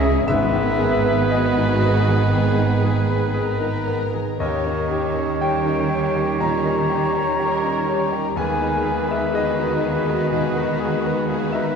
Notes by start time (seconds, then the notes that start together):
Already playing: C#2 G#2 C#3 G#3 C#4 D#4 E4 G#4 C#5 D#5 E5 F#5
0.00 C#4 G#4
0.27 G#1 G#2 D#3 B3 G#4 A#4 B4 E5
0.53 D#3
0.79 G#3 G#4
1.05 D#4 B4
1.30 F#4 G#4 D#5
1.56 D#4
1.81 G#3 B4
2.07 D#3 G#4
2.32 G#2 D#3 G#4
2.58 G#3 D#4
2.84 D#3 G#4
3.09 D#4 B4
3.34 G#4 A#4 D#5
3.61 D#4
3.87 G#3 B3
4.13 D#3 G#4
4.40 D#2 D#3 C#4 D#4 G4 C#5 D#5
4.65 G3 C#4 D#4 A#4
4.90 D#4 G4 C#5
5.16 C#4 D#4 A#4 C#5
5.40 G3 D#4 G4 C#5 G5
5.66 C#4 D#4 A#4 C#5
5.90 D#4 G4 C#5
6.15 G3 C#4 D#4 G4 A#4
6.40 A#2 D#3 D#4 G4 C#5 A#5
6.64 C#4 D#4 A#4
6.90 G3 D#4 G4 C#5
7.14 C#4 D#4 A#4 C#5
7.39 D#4 G4 A#4 C#5
7.64 C#4 D#4 A#4 C#5
7.87 D#4 G4 C#5
8.11 G3 C#4 D#4 G4 A#4
8.35 D#2 D#3 G#3 A#3 B3 G#4 B4 G#5
8.60 G#3 B3 D#4 A#4 B4
8.84 A#3 B3 G#4 B4
9.08 B3 A#4 B4 E5
9.33 A#3 F#4 G#4 B4 D#5
9.57 B3 D#4 A#4 B4
9.82 A#3 G#4 B4
10.07 G#3 B3 G#4 A#4 B4
10.31 B2 D#3 A#3 G#4 B4
10.56 B3 D#4 A#4 B4
10.79 G#3 A#3 G#4 B4
11.04 B3 A#4 B4
11.29 A#3 G#4 B4
11.52 B3 D#4 A#4 B4 E5